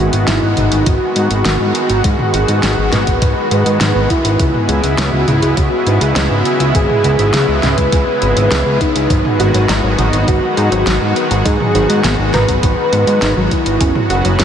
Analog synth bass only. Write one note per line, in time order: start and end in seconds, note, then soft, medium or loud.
0.00 0.11 G#1 loud
0.13 0.26 G#1 medium
0.28 0.40 G#1 loud
0.42 0.55 G#1 medium
0.57 0.70 G#1 medium
0.72 0.84 G#1 medium
0.87 0.99 G#1 loud
1.16 1.29 G#2 medium
1.31 1.43 G#1 medium
1.46 1.58 G#1 loud
1.60 1.73 G#2 medium
1.90 2.02 G#1 medium
2.04 2.17 G#2 loud
2.34 2.46 G#1 medium
2.49 2.61 G#2 medium
2.63 2.76 G#1 loud
2.78 2.90 G#1 medium
2.93 3.05 G#1 medium
3.07 3.20 G#1 medium
3.22 3.34 G#1 loud
3.51 3.64 G#2 medium
3.66 3.79 G#2 medium
3.80 3.93 G#1 loud
3.95 4.08 G#1 medium
4.25 4.37 G#1 medium
4.39 4.52 C#2 loud
4.69 4.81 C#2 medium
4.84 4.96 C#2 medium
4.98 5.11 C#2 loud
5.13 5.25 C#2 medium
5.28 5.40 C#2 medium
5.42 5.55 C#2 medium
5.57 5.70 C#2 loud
5.87 5.99 G#1 medium
6.01 6.14 C#2 medium
6.16 6.29 C#2 loud
6.31 6.43 G#1 medium
6.60 6.73 C#2 medium
6.75 6.87 G#1 loud
7.04 7.17 C#2 medium
7.19 7.31 G#1 medium
7.34 7.46 C#2 loud
7.48 7.61 C#2 medium
7.63 7.76 C#2 medium
7.78 7.90 C#2 medium
7.92 8.05 C#2 loud
8.22 8.34 G#1 medium
8.37 8.49 G#1 medium
8.51 8.64 C#2 loud
8.66 8.78 C#2 medium
8.95 9.08 C#2 medium
9.10 9.23 G#1 loud
9.40 9.52 G#1 medium
9.54 9.67 G#1 medium
9.69 9.81 G#1 loud
9.84 9.96 G#1 medium
9.98 10.11 G#1 medium
10.13 10.26 G#1 medium
10.28 10.40 G#1 loud
10.57 10.70 G#2 medium
10.72 10.84 G#1 medium
10.87 10.99 G#1 loud
11.01 11.14 G#2 medium
11.31 11.43 G#1 medium
11.45 11.58 G#2 loud
11.75 11.87 G#1 medium
11.90 12.02 G#2 medium
12.04 12.17 G#1 loud
12.19 12.32 G#1 medium
12.34 12.46 G#1 medium
12.48 12.61 G#1 medium
12.63 12.76 G#1 loud
12.92 13.05 G#2 medium
13.07 13.20 G#2 medium
13.22 13.34 G#1 loud
13.37 13.49 G#1 medium
13.66 13.79 G#1 medium
13.81 13.93 F#1 loud
14.10 14.23 F#1 medium
14.25 14.37 F#1 medium
14.39 14.44 F#1 loud